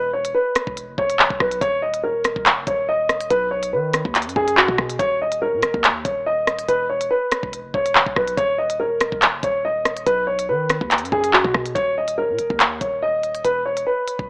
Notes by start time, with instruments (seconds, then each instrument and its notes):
Already playing: 808-style bass E1
0.13 grand piano C#5
0.25 closed hi-hat
0.35 grand piano B4
0.55 cross-stick, closed hi-hat
0.67 808-style bass E1, kick
0.77 closed hi-hat
0.88 808-style bass F#1
0.98 808-style bass E1, grand piano C#5, kick
1.10 closed hi-hat
1.19 808-style bass F#1, clap
1.30 808-style bass E1, kick
1.40 808-style bass B1, grand piano B4, kick, cross-stick
1.51 closed hi-hat
1.61 808-style bass D#1, grand piano C#5, kick, closed hi-hat
1.82 grand piano D#5
1.94 closed hi-hat
2.03 grand piano A#4
2.15 808-style bass E1
2.24 808-style bass D#1, cross-stick, closed hi-hat
2.36 808-style bass D#1, kick
2.46 clap, closed hi-hat
2.57 808-style bass F#1
2.67 808-style bass D#1, grand piano C#5, kick, closed hi-hat
2.89 grand piano D#5
3.09 808-style bass E1, cross-stick, closed hi-hat
3.21 808-style bass D#1, closed hi-hat
3.30 808-style bass B1, grand piano B4, closed hi-hat
3.51 grand piano C#5
3.63 closed hi-hat
3.73 808-style bass D#3, grand piano B4
3.93 cross-stick, closed hi-hat
4.05 808-style bass D#2, kick
4.15 clap, closed hi-hat
4.22 closed hi-hat
4.26 808-style bass F#2, closed hi-hat
4.36 808-style bass F#2, grand piano G#4, kick
4.48 closed hi-hat
4.57 grand piano F#4, clap
4.68 808-style bass B2, kick
4.78 808-style bass B2, kick, cross-stick
4.90 closed hi-hat
4.99 808-style bass D#1, grand piano C#5, kick, closed hi-hat
5.22 grand piano D#5
5.32 closed hi-hat
5.42 grand piano A#4
5.53 808-style bass A#2
5.63 808-style bass D#1, cross-stick, closed hi-hat
5.74 808-style bass D#2, kick
5.84 clap, closed hi-hat
6.05 808-style bass D#1, grand piano C#5, kick, closed hi-hat
6.26 grand piano D#5
6.47 cross-stick, closed hi-hat
6.59 closed hi-hat
6.68 808-style bass E1, grand piano B4, closed hi-hat
6.89 grand piano C#5
7.01 closed hi-hat
7.11 grand piano B4
7.32 cross-stick, closed hi-hat
7.43 808-style bass E1, kick
7.53 closed hi-hat
7.64 808-style bass F#1
7.74 808-style bass E1, grand piano C#5, kick
7.86 closed hi-hat
7.95 808-style bass F#1, clap
8.06 808-style bass E1, kick
8.16 808-style bass B1, grand piano B4, kick, cross-stick
8.28 closed hi-hat
8.37 808-style bass D#1, grand piano C#5, kick, closed hi-hat
8.58 grand piano D#5
8.70 closed hi-hat
8.80 grand piano A#4
8.91 808-style bass E1
9.01 808-style bass D#1, cross-stick, closed hi-hat
9.12 808-style bass D#1, kick
9.22 clap, closed hi-hat
9.33 808-style bass F#1
9.43 808-style bass D#1, grand piano C#5, kick, closed hi-hat
9.65 grand piano D#5
9.85 808-style bass E1, cross-stick, closed hi-hat
9.97 808-style bass D#1, closed hi-hat
10.06 808-style bass B1, grand piano B4, closed hi-hat
10.27 grand piano C#5
10.39 closed hi-hat
10.49 808-style bass D#3, grand piano B4
10.70 cross-stick, closed hi-hat
10.81 808-style bass D#2, kick
10.91 clap, closed hi-hat
10.98 closed hi-hat
11.02 808-style bass F#2, closed hi-hat
11.12 808-style bass F#2, grand piano G#4, kick
11.24 closed hi-hat
11.33 grand piano F#4, clap
11.44 808-style bass B2, kick
11.54 808-style bass B2, kick, cross-stick
11.66 closed hi-hat
11.75 808-style bass D#1, grand piano C#5, kick, closed hi-hat
11.98 grand piano D#5
12.08 closed hi-hat
12.18 grand piano A#4
12.29 808-style bass A#2
12.39 808-style bass D#1, closed hi-hat
12.50 808-style bass D#2, kick
12.60 clap, closed hi-hat
12.81 808-style bass D#1, grand piano C#5, kick, closed hi-hat
13.02 grand piano D#5
13.23 closed hi-hat
13.35 closed hi-hat
13.45 808-style bass E1, grand piano B4, closed hi-hat
13.66 grand piano C#5
13.77 closed hi-hat
13.87 grand piano B4
14.08 closed hi-hat
14.19 808-style bass E1, kick